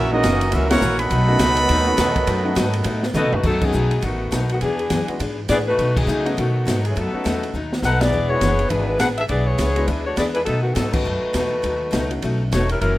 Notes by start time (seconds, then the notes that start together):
Already playing: A#1 F#2 E3 A#3 C#4 F#4 A#4 E5
0.10 E3 G#3 A#3 C#4 D#4 E4 F#4 A#4 D#5
0.23 F#1 F#2 E3 A#3 C#4, kick, snare, hi-hat pedal, ride
0.41 ride
0.52 C#2 F#2 E3 A#3 C#4 E4 F#4 A#4 E5, kick, ride
0.56 C#4
0.70 G#3 A#3 C#4 E4 F#4 A#4 C#5 F#5, snare, ride
0.81 A#1 F#2 E3 A#3 C#4, hi-hat pedal
0.99 D#3 F#3 B3 A4 D#5 F#5 B5, ride
1.10 B1 B2 D#3 F#3 A3 B3 D#4, kick, ride
1.27 A3 B3 C#4 D#4 F#4
1.39 C#2 B2 F#3 A3 D#4, kick, snare, hi-hat pedal, ride
1.57 ride
1.69 D#2 B2 F#3 A3 D#4, kick, ride
1.86 A3 B3 C#4 D#4 F#4
1.97 E2 B2 F#3 A3 D#4, kick, snare, hi-hat pedal, ride
2.16 kick, ride
2.27 F#2 B2 F#3 A3 D#4, kick, ride
2.44 A3 B3 C#4 D#4 F#4
2.55 G#2 B2 F#3 A3 D#4, kick, snare, hi-hat pedal, ride
2.73 ride
2.84 A2 B2 F#3 A3 D#4, kick, ride
3.03 snare
3.14 B2 C#3 F#3 A3 B3 D#4 F#4 A4 D#5, hi-hat pedal, mid tom
3.25 B2
3.33 A2 A3 D#4 F#4 B4, floor tom
3.43 F#2 B2 F#3 A3 B3 D#4 A4, kick, crash
3.60 A3 B3 C#4 D#4 F#4, kick, crash
3.64 F#3 B3 D#4 G#4
3.73 B1 B2 F#3 A3 D#4, hi-hat pedal
3.91 ride
4.01 A1 B2 D#3 F#3 A3 B3 D#4 F#4, kick, ride
4.31 B1 B2 F#3 A3 D#4, kick, snare, hi-hat pedal, ride
4.49 D#3 A3 B3 F#4, ride
4.61 E2 E3 B3 D4 G#4, kick, ride
4.79 ride
4.90 F#2 E3 B3 D4 G#4, kick, snare, hi-hat pedal, ride
5.08 G#3 B3 D4 E4 F#4, muted upright bass stroke, ride
5.19 G#2 E3 B3 D4 G#4, kick, ride
5.48 A2 E3 B3 D4 E4 G#4 D5, kick, snare, hi-hat pedal, ride
5.67 A3 D#4 F#4 B4
5.78 B2 F#3 A3 D#4, kick, ride
5.96 F#3 B3 D#4 G#4, kick, crash
6.07 B2 C#3 F#3 A3 D#4, hi-hat pedal
6.25 A3 B3 C#4 D#4 F#4, ride
6.37 B2 D#3 F#3 A3 B3 D#4 F#4, kick, ride
6.65 G#2 B2 F#3 A3 D#4, kick, snare, hi-hat pedal, ride
6.85 E3 A3 C#4 G#4, ride
6.96 F#2 B2 F#3 A3 B3 D#4 A4, kick, ride
7.13 A3 B3 C#4 D#4 F#4, muted upright bass stroke
7.24 E2 B2 F#3 A3 D#4, kick, snare, hi-hat pedal, ride
7.43 ride
7.54 D#2 B2 F#3 A3 D#4
7.73 snare
7.82 B1 B2 F#3 A3 D#4 A4 B4 F#5, snare, hi-hat pedal
8.01 B3 E4 G#4 D5, snare, ride
8.11 E1 E3 B3 D4 G#4
8.29 G#3 B3 D4 E4 F#4 G#4 C#5
8.41 F#1 E3 B3 D4 G#4, kick, snare, hi-hat pedal, ride
8.59 ride
8.69 G#1 E3 G#3 B3 D4 E4 G#4 B4, kick, ride
8.99 A1 E3 B3 D4 G#4 B4 F#5, kick, snare, hi-hat pedal, ride
9.18 D4 G#4 B4 E5, ride
9.28 B1 E3 B3 D4 E4 G#4 D5, kick, ride
9.47 B3 E4 G#4 C#5
9.58 C#2 E3 B3 D4 G#4, kick, snare, hi-hat pedal, ride
9.76 G#3 B3 D4 E4 F#4, ride
9.87 D2 E3 G#3 B3 D4 E4 G#4 B4, kick, ride
10.05 A3 D4 F#4 C#5
10.16 E2 E3 B3 D4 E4 G#4 D5, kick, snare, hi-hat pedal, ride
10.35 G#3 D4 E4 B4, ride
10.45 B2 F#3 A3 B3 D#4 A4, kick, ride
10.62 D#3 A3 B3 F#4
10.74 G#2 B2 F#3 A3 B3 D#4 A4, kick, snare, hi-hat pedal, ride
10.91 A3 B3 C#4 D#4 F#4 B4, kick, crash
11.05 F#2 B2 F#3 A3 D#4
11.23 muted upright bass stroke
11.33 E2 B2 F#3 A3 D#4, kick, snare, hi-hat pedal, ride
11.62 D#2 B2 F#3 A3 D#4, kick, ride
11.91 C#2 B2 F#3 A3 D#4, kick, snare, hi-hat pedal, ride
12.10 A3 B3 C#4 D#4 F#4, ride
12.22 B1 B2 F#3 A3 D#4, kick, ride
12.51 E1 B2 F#3 A3 B3 C#4 D#4 F#4 C#5, kick, snare, hi-hat pedal, ride
12.69 G3 C#4 E4 A#4, ride
12.80 F#1 F#2 E3 F#3 A#3 C#4 E4 A#4, kick, ride